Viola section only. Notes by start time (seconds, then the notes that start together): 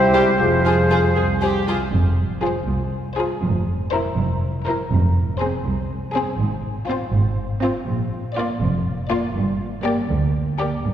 0.14 E4
0.64 F4
0.90 F4
1.16 G#4
1.42 G4
1.68 F4
2.43 F4
3.18 F4
3.93 E4
4.67 E4
5.42 C4
6.15 C4
6.89 C4
7.63 C4
8.37 A#3
9.11 A#3
9.86 A#3
10.61 A#3